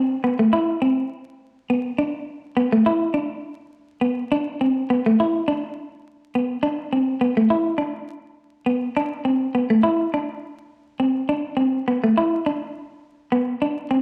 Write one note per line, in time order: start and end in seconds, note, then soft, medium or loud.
0.00 0.16 C4 medium
0.24 0.36 B3 medium
0.39 0.50 A3 medium
0.53 0.75 E4 medium
0.82 1.04 C4 medium
1.70 1.92 B3 medium
1.98 2.20 D4 medium
2.57 2.68 B3 medium
2.72 2.82 A3 medium
2.86 3.08 E4 medium
3.14 3.36 D4 medium
4.01 4.23 B3 medium
4.32 4.53 D4 loud
4.61 4.82 C4 medium
4.90 5.01 B3 medium
5.06 5.16 A3 medium
5.20 5.41 E4 medium
5.48 5.69 D4 medium
6.35 6.57 B3 medium
6.63 6.85 D4 medium
6.93 7.14 C4 medium
7.21 7.33 B3 medium
7.37 7.47 A3 medium
7.50 7.72 E4 medium
7.78 8.01 D4 medium
8.66 8.88 B3 medium
8.97 9.18 D4 medium
9.25 9.47 C4 medium
9.55 9.66 B3 medium
9.70 9.80 A3 medium
9.83 10.05 E4 medium
10.14 10.35 D4 medium
11.00 11.22 C4 medium
11.29 11.51 D4 medium
11.57 11.79 C4 medium
11.88 11.99 B3 medium
12.04 12.13 A3 medium
12.18 12.39 E4 medium
12.46 12.68 D4 medium
13.32 13.54 B3 medium
13.62 13.84 D4 medium
13.91 14.02 C4 medium